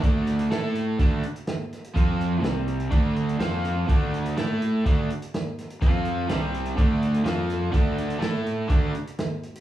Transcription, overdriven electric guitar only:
0.01 D3 A3 D4
0.50 A3 E4 A4
0.99 D3 A3 D4
1.94 F3 C4 F4
2.43 C3 G3 C4
2.90 D3 A3 D4
3.40 F3 C4 F4
3.87 D3 A3 D4
4.36 A3 E4 A4
4.86 D3 A3 D4
5.81 F3 C4 F4
6.28 C3 G3 C4
6.76 D3 A3 D4
7.24 F3 C4 F4
7.71 D3 A3 D4
8.19 A3 E4 A4
8.68 D3 A3 D4

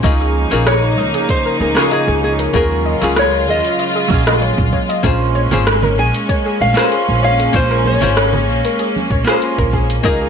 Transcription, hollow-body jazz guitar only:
0.03 A#3 C#4 D#4 F4 G#4
0.51 A#3 C#4 D#4 F4 G#4
1.75 A#3 C#4 D#4 F4
1.80 G#4
2.53 F#3 A#3 C#4 F4 G#4
3.01 F#3 A#3 C#4 F4 G#4
4.08 F#3 A#3 C#4
4.12 F4 G#4
5.03 A#3 C#4 F4 G#4 C5
5.51 A#3 C#4 F4 G#4 C5
6.74 A#3 C#4 F4
6.78 G#4 C5
7.53 A#3 C#4 F4 G#4 C5
8.01 A#3 C#4 F4 G#4 C5
9.24 A#3 C#4 F4 G#4
9.30 C5
10.03 A#3 C#4 D#4 F4 G#4

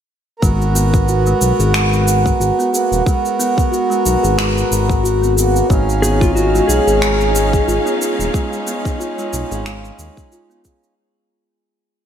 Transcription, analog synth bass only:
0.43 G#1
1.41 B1
1.59 G#1
2.40 G#1
2.92 D#1
4.06 B1
4.24 G#1
4.71 G#1
5.70 G#1
6.69 B1
6.87 G#1
7.68 G#1
8.19 D#1
9.33 B1
9.51 G#1
9.99 D#2

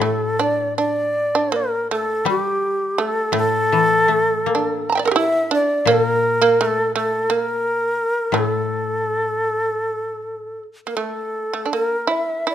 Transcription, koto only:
0.00 A2
2.25 G3
3.32 A2
3.72 E3
4.08 A3
4.46 A#3
5.86 A#2
8.32 A2

